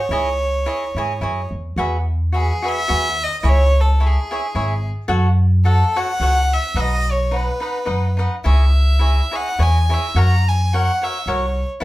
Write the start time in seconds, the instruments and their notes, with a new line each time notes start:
Already playing: violin C#5
0.09 upright bass C#2, cavaquinho E4 G#4 C#5 D#5
0.66 cavaquinho E4 G#4 C#5 D#5
0.95 upright bass G#2, cavaquinho E4 G#4 C#5 D#5
1.21 upright bass F#2, cavaquinho E4 G#4 C#5 D#5
1.51 upright bass E2
1.76 upright bass E2, cavaquinho F#4 G#4 B4 E5
2.32 cavaquinho F#4 G#4 B4 E5, violin G#4
2.62 cavaquinho F#4 G#4 B4 E5
2.69 violin E5
2.88 upright bass D#2, cavaquinho F#4 G#4 B4 E5
3.24 violin D#5
3.40 upright bass C#2, cavaquinho E4 G#4, violin D#5
3.44 cavaquinho C#5 E5
3.49 violin C#5
3.81 violin A4
4.00 cavaquinho E4 G#4 C#5 E5
4.06 violin G#4
4.31 cavaquinho E4 G#4 C#5 E5
4.55 upright bass G#1, cavaquinho E4 G#4 C#5 E5
5.08 upright bass F#2, cavaquinho F#4 A4 C#5 F#5
5.65 cavaquinho F#4 A4 C#5 F#5, violin A4
5.96 cavaquinho F#4 A4 C#5 F#5, violin F#5
6.20 upright bass C#2, cavaquinho F#4 A4 C#5 F#5
6.53 violin E5
6.74 upright bass B1, cavaquinho D#4 B4 D#5 F#5
6.81 violin D#5
7.11 violin C#5
7.31 cavaquinho D#4 B4 D#5 F#5
7.36 violin B4
7.60 cavaquinho D#4 B4 D#5 F#5
7.85 upright bass F#2, cavaquinho D#4 B4 D#5 F#5
8.17 cavaquinho D#4 B4 D#5 F#5
8.44 upright bass C#2, cavaquinho E4 G#4 C#5 D#5, violin E5
8.99 cavaquinho E4 G#4 C#5 D#5
9.31 cavaquinho E4 G#4 C#5 D#5
9.36 violin F#5
9.58 upright bass E2, cavaquinho E4 G#4 C#5 D#5
9.63 violin G#5
9.89 cavaquinho E4 G#4 C#5 D#5
9.94 violin E5
10.15 upright bass F#2, cavaquinho F#4 A#4 C#5 F#5, violin A#5
10.48 violin G#5
10.73 cavaquinho F#4 A#4 C#5 F#5, violin F#5
11.02 cavaquinho F#4 A#4 C#5 F#5, violin E5
11.26 upright bass C2, cavaquinho F#4 A#4 C#5 F#5, violin C#5
11.80 cavaquinho E4 A4